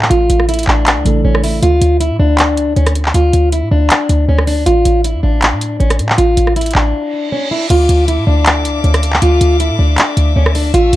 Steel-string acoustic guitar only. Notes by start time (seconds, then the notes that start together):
0.10 F4
0.49 E4
0.67 D4
1.25 C#4
1.44 E4
1.63 F4
2.00 E4
2.20 D4
2.77 C#4
3.15 F4
3.53 E4
3.71 D4
4.29 C#4
4.47 D4
4.66 F4
5.05 E4
5.23 D4
5.80 C#4
6.18 F4
6.56 E4
6.75 D4
7.32 C#4
7.51 E4
7.70 F4
8.08 E4
8.27 D4
8.84 C#4
9.22 F4
9.60 E4
9.79 D4
10.36 C#4
10.55 D4
10.74 F4